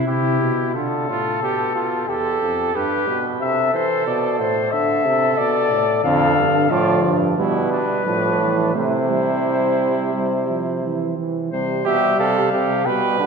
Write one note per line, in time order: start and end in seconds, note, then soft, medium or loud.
0.07 0.40 C3 medium
0.07 0.74 E4 loud
0.07 0.74 G4 medium
0.41 0.74 B2 medium
0.75 1.10 D3 medium
0.75 1.06 F4 medium
0.75 2.10 A4 medium
1.08 1.43 A2 medium
1.08 1.42 F4 medium
1.42 2.08 B2 medium
1.42 1.75 G4 medium
1.75 2.08 F4 medium
2.08 2.41 E2 medium
2.08 2.74 G4 medium
2.08 2.77 A4 medium
2.41 2.74 F2 medium
2.75 3.10 G2 medium
2.75 3.25 G4 medium
2.75 3.24 B4 medium
3.08 3.43 B2 medium
3.41 3.73 C3 medium
3.41 4.70 A4 medium
3.41 3.73 E5 medium
3.74 4.06 E3 medium
3.74 4.06 C5 medium
4.07 4.41 B2 medium
4.07 4.39 D5 medium
4.39 4.72 A2 medium
4.39 4.73 C5 medium
4.72 5.07 D3 medium
4.72 6.02 A4 medium
4.72 5.39 E5 loud
5.05 5.38 C3 medium
5.38 5.73 B2 medium
5.38 6.04 D5 loud
5.71 6.04 A2 medium
6.04 6.37 F2 loud
6.04 6.67 D3 loud
6.04 6.70 A4 medium
6.04 6.72 F5 medium
6.37 6.70 G2 medium
6.71 7.06 A2 loud
6.71 7.37 F3 medium
6.71 7.14 F4 medium
6.71 7.15 D5 medium
7.05 7.38 G2 medium
7.38 7.81 B2 medium
7.38 8.05 G3 medium
7.38 7.69 E4 medium
7.38 8.71 B4 medium
7.72 8.05 D4 medium
8.05 8.77 A2 medium
8.05 8.42 F3 medium
8.05 8.74 D4 medium
8.40 8.75 E3 medium
8.75 11.18 C3 medium
8.75 9.12 A3 medium
8.75 11.14 E4 medium
8.75 11.14 C5 medium
9.10 10.14 G3 medium
10.14 10.48 G3 medium
10.49 10.83 F3 medium
10.84 11.17 E3 medium
11.18 11.51 E3 medium
11.52 11.87 C3 medium
11.52 12.82 G3 medium
11.52 11.83 C5 medium
11.85 12.18 B2 medium
11.85 12.17 G4 loud
11.85 12.20 E5 medium
12.19 12.52 C3 medium
12.19 12.52 A4 loud
12.19 12.87 F5 medium
12.52 12.85 C3 medium
12.52 12.87 G4 medium
12.86 13.18 B2 medium
12.86 13.26 G3 medium
12.86 13.26 B4 loud
12.86 13.19 G5 medium
13.19 13.26 D3 medium
13.19 13.26 B4 medium